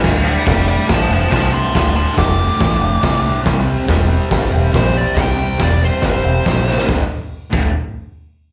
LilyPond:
<<
  \new Staff \with { instrumentName = "Lead electric guitar" } { \time 4/4 \key d \minor \tempo 4 = 140 r8 <d'' g''>8 <d'' g''>8 <d'' g''>8 <c'' a''>8 <c'' a''>8 <c'' a''>8 <a'' c'''>8 | <a'' c'''>8 <a'' c'''>8 d'''2. | r2. c''8 d''8 | g''4 d''8 c''8 c''2 |
r1 | }
  \new Staff \with { instrumentName = "Distorted electric guitar" } { \clef bass \time 4/4 \key d \minor <d, a, d>8 <d, a, d>8 <d, a, d>8 <d, a, d>8 <d, a, d>8 <d, a, d>8 <d, a, d>8 <d, a, d>8 | <d, a, d>8 <d, a, d>8 <d, a, d>8 <d, a, d>8 <d, a, d>8 <d, a, d>8 <d, a, d>8 <d, a, d>8 | <c g c'>8 <c g c'>8 <c g c'>8 <c g c'>8 <c g c'>8 <c g c'>8 <c g c'>8 <c g c'>8 | <c g c'>8 <c g c'>8 <c g c'>8 <c g c'>8 <c g c'>8 <c g c'>8 <c g c'>8 <c g c'>8 |
<d, a, d>8 r4 <d, a, d>8 r2 | }
  \new Staff \with { instrumentName = "Picked electric bass" } { \clef bass \time 4/4 \key d \minor d,,4 f,,4 a,,8 f,,8 c,4 | d,,4 f,,4 a,,8 f,,8 c,4 | c,4 e,,4 g,,8 e,,8 bes,,4 | c,4 e,,4 g,,8 e,,8 bes,,4 |
d,,8 r4 d,,8 r2 | }
  \new DrumStaff \with { instrumentName = "Drums" } \drummode { \time 4/4 <cymc bd sn>4 <hho bd sn>4 <hho bd sn>4 <hho bd sn>4 | <hho bd sn>4 <hho bd sn>4 <hho bd sn>4 <hho bd sn>4 | <hho bd sn>4 <hho bd sn>4 <hho bd sn>4 <hho bd sn>4 | <hho bd sn>4 <hho bd sn>4 <hho bd sn>4 <hho bd sn>8 sn16 sn16 |
<bd sn>4 r8 <cymc bd>8 r4 r4 | }
>>